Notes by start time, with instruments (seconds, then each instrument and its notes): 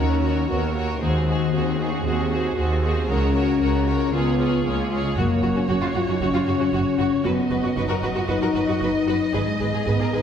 Already playing: cello section D#2, double bass section D#2, harp D#3 A#3 C#4 F#4 A#4, french horn section C#4, viola section F#4, violin section A#4 C#5
0.21 harp C#4, viola section F#4, violin section A#4 C#5
0.48 cello section D#2, double bass section D#2, french horn section B3, viola section F#4, harp F#4, violin section A#4 C#5
0.74 french horn section A#3, viola section F#4, harp A#4, violin section A#4 C#5
0.88 french horn section A#3
1.00 cello section D#2, double bass section D#2, harp D#3, french horn section G#3, viola section F#4, violin section G#4 C5
1.27 harp C4, viola section F#4, violin section G#4 C5
1.52 cello section D#2, double bass section D#2, french horn section C4, viola section F#4, harp F#4, violin section G#4 C5
1.79 french horn section D#4, viola section F#4, harp G#4, violin section G#4 C5
1.92 french horn section C#4
2.05 double bass section D#2, cello section D#2, french horn section C4, harp D#4, viola section F#4, violin section G#4 C5
2.31 harp C4, viola section F#4, violin section G#4 C5
2.57 double bass section D#2, cello section D#2, french horn section C4, viola section F#4, harp F#4, violin section G#4 C5
2.82 french horn section A#3, viola section F#4, harp G#4, violin section G#4 C5
2.97 french horn section C4
3.08 double bass section C#2, cello section C#2, harp C#3, timpani C#3, french horn section C#4, viola section F#4, violin section A#4 C#5
3.34 harp C#4, viola section F#4, violin section A#4 C#5
3.60 cello section C#2, double bass section C#2, viola section F#4, harp F#4, violin section A#4 C#5
3.86 viola section F#4, harp A#4, violin section A#4 C#5
4.12 double bass section C#2, cello section C#2, harp C#3, french horn section B3, viola section F4, violin section G#4 C#5
4.38 harp C#4, viola section F4, violin section G#4 C#5
4.63 cello section C#2, double bass section C#2, french horn section A#3, viola section F4, harp F4, violin section G#4 C#5
4.90 french horn section G#3, viola section F4, violin section G#4 C#5, harp C#5
5.05 french horn section G#3
5.16 double bass section F#1, harp F#2, cello section F#2, timpani F#2, french horn section A#3, violin section F#4 C#5, viola section F#4
5.42 double bass section F#1, cello section F#2, harp C#4, viola section F#4, violin section F#4
5.56 cello section F#2, violin section C#4, viola section F#4
5.68 double bass section F#1, cello section F#2, french horn section C#4, violin section F#4, harp F#4, viola section F#4
5.81 cello section F#2, violin section F4, viola section F#4
5.94 double bass section F#1, cello section F#2, french horn section F4, violin section F#4, viola section F#4, harp C#5
6.07 cello section F#2, violin section C#4, french horn section D#4, viola section F#4
6.21 double bass section F#1, cello section F#2, harp C#3, french horn section C#4, violin section F#4, viola section F#4
6.34 cello section F#2, violin section F4, viola section F#4
6.47 double bass section F#1, cello section F#2, harp C#4, viola section F#4, violin section F#4
6.59 cello section F#2, violin section C#4, viola section F#4
6.72 double bass section F#1, cello section F#2, french horn section C#4, viola section F#4, violin section F#4, harp F#4
6.98 double bass section F#1, cello section F#2, viola section F#4, violin section F#4, harp C#5
7.24 double bass section F#1, cello section F#2, harp F#2, french horn section B3, viola section F#4, violin section B4 D#5
7.50 double bass section F#1, cello section F#2, harp B3, viola section F#4, violin section B4
7.63 cello section F#2, viola section F#4, violin section F#4
7.76 double bass section F#1, cello section F#2, french horn section D#4, viola section F#4, harp F#4, violin section B4
7.89 cello section F#2, viola section F#4, violin section A#4
8.02 double bass section F#1, cello section F#2, viola section F#4, french horn section F#4, violin section B4, harp D#5
8.15 cello section F#2, french horn section F4, viola section F#4, violin section F#4
8.28 double bass section F#1, cello section F#2, harp F#3, french horn section D#4, viola section F#4, violin section B4
8.42 cello section F#2, viola section F#4, violin section A#4
8.54 double bass section F#1, cello section F#2, harp B3, viola section F#4, violin section B4
8.67 cello section F#2, viola section F#4, violin section F#4
8.80 double bass section F#1, cello section F#2, french horn section D#4, viola section F#4, harp F#4, violin section B4
9.07 double bass section F#1, cello section F#2, viola section F#4, violin section B4, harp D#5
9.33 double bass section G#1, cello section G#2, harp G#2, french horn section G#3, viola section G#4, violin section B4
9.60 double bass section G#1, cello section G#2, harp B3, viola section G#4, violin section B4
9.73 cello section G#2, viola section G#4, violin section G#4
9.86 double bass section G#1, cello section G#2, french horn section B3, harp D#4, viola section G#4, violin section B4
9.99 cello section G#2, viola section G#4, violin section A#4
10.12 double bass section G#1, cello section G#2, french horn section D#4, viola section G#4, violin section B4, harp D#5